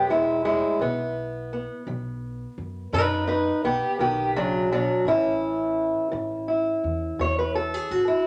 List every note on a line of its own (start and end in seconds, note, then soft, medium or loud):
0.00 0.59 E1 medium
0.09 0.45 G#2 medium
0.09 0.44 G#3 medium
0.09 0.44 E4 medium
0.45 0.81 A2 medium
0.45 0.80 G#3 medium
0.45 0.80 E4 medium
0.79 1.65 B1 medium
0.79 1.44 B2 medium
0.79 1.52 B3 medium
1.53 3.63 B3 soft
1.87 2.44 B1 medium
1.87 2.51 F#3 medium
2.58 2.86 F#2 medium
2.93 3.50 F#2 medium
2.93 3.57 B2 medium
2.93 3.26 D#4 medium
2.93 3.27 B4 medium
3.27 3.64 D#4 medium
3.27 3.64 B4 medium
3.64 3.78 B1 medium
3.64 3.99 B3 medium
3.64 4.00 G4 medium
3.99 4.85 B1 medium
3.99 4.35 D#3 medium
3.99 4.36 B3 medium
3.99 4.36 G4 medium
4.36 4.71 C#3 medium
4.36 4.71 F#3 medium
4.36 4.72 D4 medium
4.72 5.07 B2 medium
4.72 5.07 F#3 medium
4.72 5.07 D4 medium
5.05 5.91 A1 medium
5.05 5.71 A2 medium
5.05 6.11 E3 soft
5.05 8.25 C#4 medium
5.05 6.47 E4 medium
6.12 6.70 A1 medium
6.12 6.76 E3 medium
6.48 7.74 E4 soft
6.84 7.13 E2 medium
7.19 7.76 E2 medium
7.19 7.84 A2 medium
7.19 7.38 C#5 medium
7.39 7.55 B4 medium
7.55 8.07 A4 medium
7.74 7.91 G#4 medium
7.91 8.05 A1 medium
7.91 8.27 F#4 medium
8.08 8.27 E4 medium